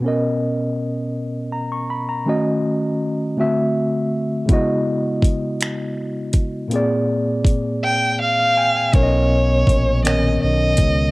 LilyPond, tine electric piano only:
\new Staff \with { instrumentName = "Tine electric piano" } { \time 6/8 \key b \major \tempo 4. = 54 << { r2 ais''16 cis'''16 b''16 ais''16~ | ais''16 r2 r8. | r2. | r2 eis''16 eis''16 <g'' gis''>16 gis''16~ |
gis''16 r2 r8. | } \\ { <b, b cis' ais' dis''>2. | <dis a cis' fis' dis''>4. <d a c' fis' e''>4. | <cis gis b e' fis' dis''>2. | <ais, ais c' gis' d''>2. |
<b, b cis' ais' cis'' dis''>4 r8 <dis b cis' ais' cis''>4 r8 | } >> }